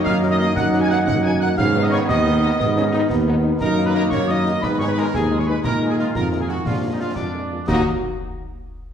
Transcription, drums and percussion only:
0.06 concert bass drum, snare
0.23 snare
0.40 snare
0.56 concert bass drum, snare
0.73 snare
0.91 snare
1.08 concert bass drum, snare
1.58 concert bass drum, snare, crash
1.92 snare
2.09 concert bass drum, snare
2.26 snare
2.43 snare
2.60 concert bass drum, snare
2.77 snare
2.93 snare
3.10 concert bass drum, snare
3.61 concert bass drum, snare, crash
3.95 snare
4.11 concert bass drum, snare
4.29 snare
4.46 snare
4.63 concert bass drum, snare
4.80 snare
4.98 snare
5.14 concert bass drum, snare
5.64 concert bass drum, snare, crash
5.99 snare
6.15 concert bass drum, snare
6.32 snare
6.49 snare
6.65 concert bass drum, snare
7.16 concert bass drum, snare
7.68 concert bass drum, snare, crash

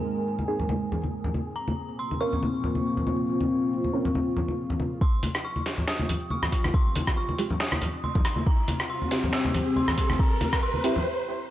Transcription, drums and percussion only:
0.39 high conga
0.60 low conga
0.69 high conga
0.92 low conga
1.04 high conga
1.24 low conga
1.34 high conga
1.68 high conga
2.11 high conga
2.33 low conga
2.43 high conga
2.64 low conga
2.75 high conga
2.97 low conga
3.07 high conga
3.41 high conga
3.84 high conga
4.05 low conga
4.15 high conga
4.37 low conga
4.48 high conga
4.70 low conga
4.80 high conga
5.01 kick
5.23 closed hi-hat, high conga
5.35 cross-stick
5.56 high conga
5.66 snare, closed hi-hat
5.78 low conga
5.88 snare
5.99 high conga
6.09 closed hi-hat, low conga
6.30 high conga
6.42 cross-stick, low conga
6.52 kick, closed hi-hat
6.64 cross-stick, high conga
6.74 kick
6.95 closed hi-hat, high conga
7.07 kick, cross-stick
7.29 high conga
7.39 closed hi-hat
7.50 low conga
7.60 snare
7.72 cross-stick, high conga
7.82 closed hi-hat, low conga
8.04 high conga
8.15 kick, low conga
8.25 cross-stick, closed hi-hat
8.36 high conga
8.47 kick
8.68 closed hi-hat, high conga
8.80 cross-stick
9.02 high conga
9.11 snare, closed hi-hat
9.24 low conga
9.33 snare
9.45 high conga
9.54 closed hi-hat, low conga
9.76 high conga
9.88 cross-stick, low conga
9.98 kick, closed hi-hat
10.10 cross-stick, high conga
10.19 kick
10.41 closed hi-hat, high conga
10.53 kick, cross-stick
10.74 high conga
10.84 closed hi-hat
10.96 low conga

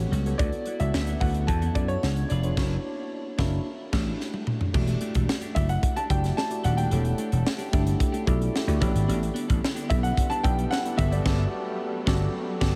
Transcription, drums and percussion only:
0.13 closed hi-hat
0.26 closed hi-hat
0.39 kick, closed hi-hat
0.52 closed hi-hat
0.66 closed hi-hat
0.80 closed hi-hat
0.94 snare
1.07 closed hi-hat
1.21 kick, open hi-hat
1.34 closed hi-hat
1.48 kick, closed hi-hat
1.62 closed hi-hat
1.75 kick, closed hi-hat
1.89 closed hi-hat
2.03 snare
2.16 closed hi-hat
2.30 closed hi-hat
2.43 closed hi-hat
2.57 kick, snare, crash
3.39 kick, snare
3.93 kick, snare, crash
4.21 snare
4.34 high tom
4.47 mid tom
4.61 floor tom
4.74 kick, crash
4.88 closed hi-hat
5.01 closed hi-hat
5.15 kick, closed hi-hat
5.29 snare
5.41 closed hi-hat
5.56 kick, closed hi-hat
5.69 closed hi-hat
5.83 kick, closed hi-hat
5.97 closed hi-hat
6.10 kick, closed hi-hat
6.24 snare, closed hi-hat
6.38 snare
6.51 closed hi-hat
6.64 closed hi-hat
6.78 closed hi-hat
6.91 closed hi-hat
7.05 closed hi-hat
7.18 closed hi-hat
7.32 closed hi-hat
7.46 snare
7.59 closed hi-hat
7.73 kick, closed hi-hat
7.87 closed hi-hat
8.00 kick, closed hi-hat
8.14 closed hi-hat
8.27 kick, closed hi-hat
8.42 closed hi-hat
8.56 snare
8.68 closed hi-hat
8.82 kick, closed hi-hat
8.96 closed hi-hat
9.10 closed hi-hat
9.23 closed hi-hat
9.36 closed hi-hat
9.50 kick, closed hi-hat
9.64 snare
9.76 closed hi-hat
9.90 kick, closed hi-hat
10.04 closed hi-hat
10.17 kick, closed hi-hat
10.31 closed hi-hat
10.44 kick, closed hi-hat
10.59 closed hi-hat
10.72 snare
10.85 closed hi-hat
10.99 kick, closed hi-hat
11.12 closed hi-hat
11.26 kick, snare, crash
12.07 kick, snare
12.61 kick, snare, crash

